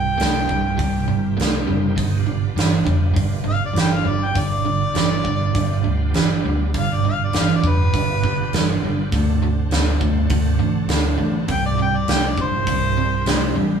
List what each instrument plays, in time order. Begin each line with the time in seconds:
Already playing: fingered electric bass C2, overdriven electric guitar C3 G3, tonewheel organ A#3 C4 E4 G4, harmonica G5
0.18 fingered electric bass C2, overdriven electric guitar C3 A3, snare, open hi-hat
0.47 fingered electric bass C2, overdriven electric guitar C3 G3, kick
0.77 fingered electric bass C2, overdriven electric guitar C3 G3, kick, open hi-hat
1.08 fingered electric bass G1, overdriven electric guitar C3 G3
1.37 fingered electric bass C2, overdriven electric guitar C3 A3, open hi-hat
1.41 snare
1.67 fingered electric bass F#1, overdriven electric guitar C3 G3
1.97 fingered electric bass G1, overdriven electric guitar G2 D3, tonewheel organ C4 D#4 F#4 G#4, kick, open hi-hat
2.17 tonewheel organ B3 D4 F4 G4
2.26 overdriven electric guitar G2 D3
2.56 fingered electric bass G1, overdriven electric guitar G2 E3, snare, open hi-hat
2.85 fingered electric bass F1, overdriven electric guitar G2 D3, kick
3.14 fingered electric bass G1, overdriven electric guitar G2 D3, kick, open hi-hat
3.44 overdriven electric guitar G2 D3
3.49 harmonica F5
3.65 harmonica D5
3.73 fingered electric bass G1, overdriven electric guitar G2 E3, open hi-hat
3.78 harmonica G5, snare
3.94 harmonica F5
4.05 fingered electric bass G1, overdriven electric guitar G2 D3, harmonica D5
4.24 harmonica G5
4.34 fingered electric bass G1, overdriven electric guitar G2 D3, tonewheel organ B3 D4 F4 G4, kick, open hi-hat
4.40 harmonica D5
4.65 overdriven electric guitar G2 D3
4.94 fingered electric bass G1, overdriven electric guitar G2 E3, snare, open hi-hat
5.24 fingered electric bass G1, overdriven electric guitar G2 D3, kick
5.55 fingered electric bass G1, overdriven electric guitar G2 D3, kick, open hi-hat
5.84 fingered electric bass D2, overdriven electric guitar G2 D3
6.14 fingered electric bass G1, overdriven electric guitar G2 E3, snare, open hi-hat
6.44 fingered electric bass D2, overdriven electric guitar G2 D3
6.73 fingered electric bass G1, overdriven electric guitar G2 D3, tonewheel organ B3 D4 F4 G4, kick, open hi-hat
6.79 harmonica F5
6.93 harmonica D5
7.04 overdriven electric guitar G2 D3
7.09 harmonica F5
7.24 harmonica D5
7.33 fingered electric bass G1, overdriven electric guitar G2 E3, snare, open hi-hat
7.40 harmonica F5
7.56 harmonica D5
7.63 fingered electric bass F1, overdriven electric guitar G2 D3, kick
7.68 harmonica B4
7.93 fingered electric bass G1, overdriven electric guitar G2 D3, kick, open hi-hat
8.24 overdriven electric guitar G2 D3, kick
8.53 fingered electric bass G1, overdriven electric guitar G2 E3, snare, open hi-hat
8.82 fingered electric bass G1, overdriven electric guitar G2 D3
9.11 fingered electric bass D2, overdriven electric guitar D3 A3, tonewheel organ C4 D4 F#4 A4, kick, open hi-hat
9.42 overdriven electric guitar D3 A3
9.70 fingered electric bass D2, overdriven electric guitar D3 B3, snare, open hi-hat
10.00 fingered electric bass D2, overdriven electric guitar D3 A3, kick
10.29 fingered electric bass D2, overdriven electric guitar D3 A3, kick, open hi-hat
10.58 fingered electric bass A1, overdriven electric guitar D3 A3
10.87 fingered electric bass D2, overdriven electric guitar D3 B3, snare, open hi-hat
11.18 fingered electric bass A1, overdriven electric guitar D3 A3
11.47 fingered electric bass C2, overdriven electric guitar C3 G3, tonewheel organ C#4 F4 G#4 B4, kick, open hi-hat
11.51 harmonica G5
11.66 tonewheel organ C4 E4, harmonica D5
11.70 tonewheel organ G4 A#4
11.78 overdriven electric guitar C3 G3, harmonica G5
11.96 harmonica D5
12.07 fingered electric bass C2, overdriven electric guitar C3 A3, snare, open hi-hat
12.12 harmonica G5
12.28 harmonica D5
12.37 fingered electric bass A#1, overdriven electric guitar C3 G3, kick
12.42 harmonica C5
12.67 fingered electric bass C2, overdriven electric guitar C3 G3, kick, open hi-hat
12.97 overdriven electric guitar C3 G3
13.26 fingered electric bass C2, overdriven electric guitar C3 A3, snare, open hi-hat
13.55 fingered electric bass A1, overdriven electric guitar C3 G3